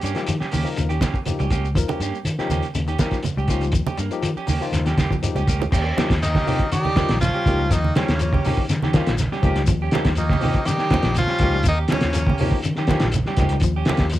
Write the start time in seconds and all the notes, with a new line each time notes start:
0.02 G2 G3 A#3 C#4 G4, closed hi-hat, shekere
0.15 F3 A#3 D#4 G4, snare, closed hi-hat, shekere
0.27 D#3 F3, closed hi-hat, shekere
0.40 C#4 G4, muted fingered electric bass stroke, snare, shekere
0.52 D#2 D#3 A#3 C#4 G4, open hi-hat, high conga, shekere
0.64 F3 A#3 D#4 A#4, shekere
0.76 D#2 C#3, closed hi-hat, shekere
0.89 D#3 C#4 G4, closed hi-hat, shekere
1.01 A#3 C#4 G4, kick, snare, closed hi-hat, high conga, shekere
1.14 muted clean electric guitar stroke, kick, shekere
1.25 F3 A#3 D#4 G4, closed hi-hat, high conga, shekere
1.39 C#2 G3 C#4 G4, closed hi-hat, shekere
1.50 A#3 C#4 G4, kick, closed hi-hat, shekere
1.65 shekere
1.75 D#2 F3 A#3 D#4 A#4, kick, closed hi-hat, shekere
1.88 C#4 G4, muted fingered electric bass stroke, closed hi-hat, high conga, shekere
2.00 G2 G3 A#3 C#4 G4, closed hi-hat, shekere
2.15 shekere
2.25 D#3, closed hi-hat, shekere
2.38 F3 A#3 C#4 D#4 G4, muted fingered electric bass stroke, snare, shekere
2.49 D#2 D#3 A#3 C#4 G4, closed hi-hat, high conga, shekere
2.62 closed hi-hat, shekere
2.75 D#2 C#3, closed hi-hat, shekere
2.88 D#3 C#4 G4, closed hi-hat, shekere
2.99 F3 A#3 C#4 D#4 G4 A#4, kick, snare, closed hi-hat, high conga, shekere
3.11 F3, kick, snare, closed hi-hat, shekere
3.23 closed hi-hat, high conga, shekere
3.37 C#2 G3 C#4 G4, shekere
3.48 F3 A#3 C#4 D#4 F4 G4, kick, closed hi-hat, shekere
3.61 G3, closed hi-hat, shekere
3.72 D#2 F3, kick, closed hi-hat, shekere
3.87 C#4 G4, muted fingered electric bass stroke, high conga, shekere
3.98 G2 G3 A#3, muted clean electric guitar stroke, closed hi-hat, shekere
4.11 F3 A#3 D#4 G4, closed hi-hat, shekere
4.23 D#3 F3, closed hi-hat, shekere
4.36 C#4 G4, muted fingered electric bass stroke, shekere
4.47 D#2 D#3 A#3 C#4 G4, open hi-hat, high conga, shekere
4.61 F3 A#3 D#4 F4, shekere
4.72 D#2 C#3, snare, closed hi-hat, shekere
4.86 D#3 C#4 G4, snare, closed hi-hat, shekere
4.98 A#3 C#4 G4, kick, snare, closed hi-hat, high conga, shekere
5.11 F3, kick, high conga, shekere
5.22 F3 A#3 D#4 G4, closed hi-hat, low conga, shekere
5.35 C#2 G3 C#4 G4, closed hi-hat, low conga, shekere
5.48 A#3 C#4 G4, kick, closed hi-hat, low conga, shekere
5.60 muted clean electric guitar stroke, low conga, shekere
5.72 D#2 A#3 C#4 G4, muted clean electric guitar stroke, kick, crash, shekere
5.86 C#4 G4
5.97 F3 G3 A#3 C#4 D#4 G4, snare, closed hi-hat, high conga, shekere
6.10 D#2, kick, snare, closed hi-hat
6.22 D#3 A#3 D#4, snare, closed hi-hat, shekere
6.35 C#4 G4, kick, snare, high conga
6.47 C3 D#3 F3 A#3 C#4 D#4 G4, open hi-hat, low conga, shekere
6.59 kick, closed hi-hat
6.72 C#3 D#3 G3 D#4 G4, closed hi-hat, shekere
6.85 D#3 C#4 G4, high conga
6.96 F3 A#3 C#4 D#4 F4 G4, kick, snare, closed hi-hat, high conga, low conga, shekere
7.09 A#1 F3, snare, closed hi-hat
7.21 F3 C#4 F4, snare, closed hi-hat, high conga, shekere
7.34 G3 C#4 G4
7.46 C#2 F3 A#3 C#4 D#4 G4, kick, closed hi-hat, low conga, shekere
7.60 G3
7.71 D#2 D#3 F3 A#3 D#4, kick, snare, closed hi-hat, shekere
7.84 muted clean electric guitar stroke, high conga
7.95 C#3 F3 G3 A#3 C#4 D#4 G4, snare, closed hi-hat, high conga, shekere
8.08 D#2, snare, closed hi-hat
8.19 F3, closed hi-hat, shekere
8.33 C#4 G4, kick, high conga
8.45 C3 D#3 F3 A#3 C#4 D#4 G4, open hi-hat, low conga, shekere
8.57 kick
8.69 C#3 D#3, snare, closed hi-hat, shekere
8.82 D#3 C#4 G4, snare, high conga
8.93 F3 A#3 C#4 D#4 F4 G4, kick, snare, closed hi-hat, high conga, shekere
9.06 A#1 F3, snare, closed hi-hat
9.18 snare, closed hi-hat, high conga, shekere
9.32 G3 C#4 G4, snare
9.42 C#2 F3 A#3 C#4 D#4 G4, kick, closed hi-hat, low conga, shekere
9.56 G3, snare, closed hi-hat
9.66 D#2 F3, kick, closed hi-hat, low conga, shekere
9.82 C#4 G4
9.91 F3 G3 A#3 C#4 D#4 G4, snare, closed hi-hat, high conga, shekere
10.05 D#2, kick, snare, closed hi-hat
10.15 D#3 F3 A#3 D#4, closed hi-hat, shekere
10.29 C#4 G4, kick, snare, high conga
10.41 C3 D#3 F3 A#3 C#4 D#4 G4, open hi-hat, shekere
10.45 low conga
10.54 kick, closed hi-hat
10.65 C#3 D#3 G3 D#4 G4, snare, closed hi-hat, shekere
10.78 D#3 C#4 G4, snare
10.90 F3 A#3 C#4 D#4 G4, kick, snare, closed hi-hat, high conga, low conga, shekere
11.02 A#1 F3, snare, closed hi-hat
11.15 F3 F4, snare, closed hi-hat, high conga, shekere
11.20 C#4
11.27 G3 C#4 G4, snare
11.38 C#2 F3 A#3 C#4 D#4 G4, kick, closed hi-hat, shekere
11.43 low conga
11.54 G3
11.63 D#2 D#3, muted clean electric guitar stroke, kick, closed hi-hat, shekere
11.68 A#3 D#4, low conga
11.77 C#4 G4
11.88 F3 G3 A#3 C#4 G4, snare, closed hi-hat, shekere
11.92 C#3 A#3 C#4 D#4 F4, high conga
12.01 D#2, snare, closed hi-hat
12.13 F3, snare, closed hi-hat, shekere
12.27 C#4 G4, kick, high conga
12.38 C3 D#3 F3 A#3 C#4 D#4 G4, open hi-hat, shekere
12.42 low conga
12.52 kick
12.63 C#3 D#3, closed hi-hat, shekere
12.76 D#3 C#4 G4, snare
12.87 F3 A#3 C#4 D#4 G4, kick, snare, closed hi-hat, high conga, shekere
12.91 G4
13.00 A#1 F3, snare, closed hi-hat
13.12 closed hi-hat, high conga, shekere
13.26 G3 C#4 G4, snare
13.37 C#2 F3 A#3 C#4 D#4 G4, kick, snare, closed hi-hat, shekere
13.42 high conga, low conga
13.49 G3, closed hi-hat
13.60 D#2 F3, kick, closed hi-hat, shekere
13.76 C#4 G4
13.85 F3 A#3 D#4, muted clean electric guitar stroke, snare, closed hi-hat, shekere
13.89 C#4 G4, high conga
13.97 D#2, kick, snare, closed hi-hat
14.10 F3, closed hi-hat, shekere